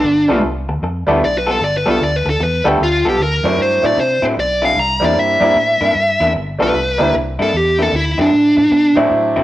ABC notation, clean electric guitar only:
X:1
M:4/4
L:1/8
Q:"Swing" 1/4=152
K:Gmix
V:1 name="Clean electric guitar"
z [G,B,FA] z3 [G,B,FA] z [G,B,FA] | z [G,B,FA] z3 [G,B,FA] z [G,B,FA] | z [D,^F,CE] z3 [D,F,CE] z [D,F,CE] | z [C,_B,DE] z3 [C,B,DE] z [C,B,DE] |
z [G,B,FA] z3 [C,_B,DE] z [C,B,DE] | z [D,^F,CE] z3 [D,F,CE] z [D,F,CE] |]